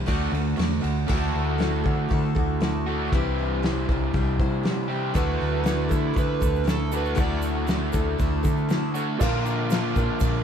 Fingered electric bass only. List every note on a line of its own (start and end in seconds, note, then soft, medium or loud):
0.08 0.31 D2 medium
0.32 0.56 D2 loud
0.58 0.81 E2 medium
0.84 1.07 D2 medium
1.09 1.33 D2 loud
1.35 1.82 D2 medium
1.85 2.09 D3 medium
2.11 2.35 D3 medium
2.36 3.09 D2 medium
3.12 3.84 C2 loud
3.89 4.13 C2 medium
4.14 4.38 C2 medium
4.39 5.11 C3 loud
5.15 5.39 D2 loud
5.42 5.88 D2 medium
5.91 6.15 D3 medium
6.16 6.40 D3 medium
6.42 7.14 D2 medium
7.17 7.89 D2 medium
7.94 8.18 D2 medium
8.19 8.43 D2 medium
8.45 9.16 D3 loud
9.21 9.92 A#2 loud
9.97 10.08 A#2 medium
10.21 10.44 A#2 medium